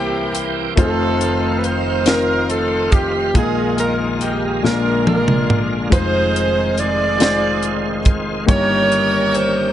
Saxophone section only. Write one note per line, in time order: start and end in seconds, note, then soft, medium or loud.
0.00 0.75 A#3 medium
0.00 0.75 E4 medium
0.00 0.46 G4 medium
0.79 2.04 C4 medium
0.79 2.04 D#4 medium
0.79 1.60 A4 medium
1.64 2.06 C5 medium
2.06 2.49 A#4 medium
2.50 2.92 A4 medium
2.91 3.34 G4 medium
3.33 4.60 D#4 medium
3.33 4.60 F4 medium
3.33 3.77 G#4 medium
3.76 4.08 A#4 medium
4.21 4.60 G4 medium
4.63 5.89 D4 medium
4.63 5.89 F4 medium
4.63 5.06 A#4 medium
5.07 5.61 A#4 medium
5.93 7.18 D#4 medium
5.93 6.81 G#4 medium
5.93 6.74 C5 medium
6.80 8.04 G#4 medium
6.80 8.07 D5 medium
8.51 9.73 A#4 medium
8.51 9.73 C#5 loud